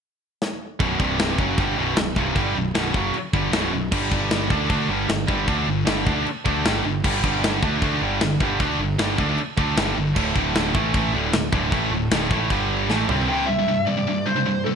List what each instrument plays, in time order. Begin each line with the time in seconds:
0.42 snare
0.80 picked electric bass B0, distorted electric guitar B1 F#2 B2, kick, china
0.99 picked electric bass C1, distorted electric guitar C2 G2 C3, kick
1.19 snare, china
1.38 picked electric bass F#1, distorted electric guitar F#2 C#3 F#3, kick
1.58 picked electric bass G1, distorted electric guitar G2 D3 G3, kick, china
1.77 picked electric bass B0, distorted electric guitar B1 F#2 B2
1.96 picked electric bass B0, distorted electric guitar B1 F#2, snare, china
2.16 picked electric bass C1, distorted electric guitar C2 G2 C3, kick
2.35 picked electric bass G1, distorted electric guitar G2 D3 G3, kick, china
2.55 picked electric bass B0, distorted electric guitar B1 F#2
2.75 picked electric bass B0, distorted electric guitar B1 F#2 B2, snare, china
2.94 picked electric bass F#1, distorted electric guitar F#2 C#3 F#3, kick
3.14 muted picked electric bass stroke, muted distorted electric guitar stroke, china
3.33 picked electric bass G1, distorted electric guitar G2 D3 G3, kick
3.52 picked electric bass B0, distorted electric guitar B1 F#2 B2, snare, china
3.72 picked electric bass B0, distorted electric guitar B1 F#2
3.92 picked electric bass G1, distorted electric guitar G2 D3 G3, kick, crash, china
4.11 picked electric bass G1, distorted electric guitar G2 D3 G3, kick
4.31 snare, china
4.50 picked electric bass D2, distorted electric guitar D3 A3 D4, kick
4.70 picked electric bass D2, distorted electric guitar D3 A3 D4, kick, china
4.89 picked electric bass G1, distorted electric guitar G2 D3 G3
5.08 picked electric bass G1, distorted electric guitar G2 D3, snare, china
5.27 picked electric bass G1, distorted electric guitar G2 D3 G3, kick
5.46 picked electric bass D2, distorted electric guitar D3 A3 D4, kick, china
5.67 picked electric bass G1, distorted electric guitar G2 D3
5.86 picked electric bass G1, distorted electric guitar G2 D3 G3, snare, china
6.06 picked electric bass D2, distorted electric guitar D3 A3 D4, kick
6.26 muted picked electric bass stroke, muted distorted electric guitar stroke, china
6.45 picked electric bass D2, distorted electric guitar D3 A3 D4, kick
6.65 picked electric bass G1, distorted electric guitar G2 D3 G3, snare, china
6.84 picked electric bass G1, distorted electric guitar G2 D3
7.04 picked electric bass G1, distorted electric guitar G2 D3 G3, kick, crash, china
7.24 picked electric bass G1, distorted electric guitar G2 D3 G3, kick
7.44 snare, china
7.62 picked electric bass D2, distorted electric guitar D3 A3 D4, kick
7.82 picked electric bass D2, distorted electric guitar D3 A3 D4, kick, china
8.02 picked electric bass G1, distorted electric guitar G2 D3 G3
8.21 picked electric bass G1, distorted electric guitar G2 D3, snare, china
8.40 picked electric bass G1, distorted electric guitar G2 D3 G3, kick
8.60 picked electric bass D2, distorted electric guitar D3 A3 D4, kick, china
8.79 picked electric bass G1, distorted electric guitar G2 D3
8.98 picked electric bass G1, distorted electric guitar G2 D3 G3, snare, china
9.18 picked electric bass D2, distorted electric guitar D3 A3 D4, kick
9.38 muted picked electric bass stroke, muted distorted electric guitar stroke, china
9.57 picked electric bass D2, distorted electric guitar D3 A3 D4, kick
9.77 picked electric bass G1, distorted electric guitar G2 D3 G3, snare, china
9.97 picked electric bass G1, distorted electric guitar G2 D3
10.16 picked electric bass D1, distorted electric guitar D2 A2 D3, kick, china, crash
10.35 picked electric bass D1, distorted electric guitar D2 A2 D3, kick
10.55 snare, china
10.74 picked electric bass A1, distorted electric guitar A2 E3 A3, kick
10.93 picked electric bass A1, distorted electric guitar A2 E3 A3, kick, china
11.13 picked electric bass D1, distorted electric guitar D2 A2 D3
11.33 picked electric bass D1, distorted electric guitar D2 A2, snare, china
11.52 picked electric bass D1, distorted electric guitar D2 A2 D3, kick
11.72 picked electric bass A1, distorted electric guitar A2 E3 A3, kick, china
11.92 picked electric bass D1, distorted electric guitar D2 A2
12.10 picked electric bass D1, distorted electric guitar D2 A2 D3, snare, china
12.30 picked electric bass A1, distorted electric guitar A2 E3 A3, kick
12.50 picked electric bass G1, distorted electric guitar G2 D3 G3, kick, china
12.89 picked electric bass A1, distorted electric guitar A2 E3 A3, snare
13.08 picked electric bass C2, distorted electric guitar C3 G3 C4, floor tom
13.29 distorted electric guitar C2 G2 C3, lead electric guitar G5
13.46 distorted electric guitar C2 G2, lead electric guitar E5
13.59 distorted electric guitar C2 G2
13.68 distorted electric guitar C2 G2
13.85 distorted electric guitar C2 G2, lead electric guitar D5
13.97 distorted electric guitar C2 G2
14.07 distorted electric guitar C2 G2
14.26 distorted electric guitar C2 G2, lead electric guitar C5
14.36 distorted electric guitar C2 G2
14.46 distorted electric guitar C2 G2
14.65 distorted electric guitar C2 G2, lead electric guitar A4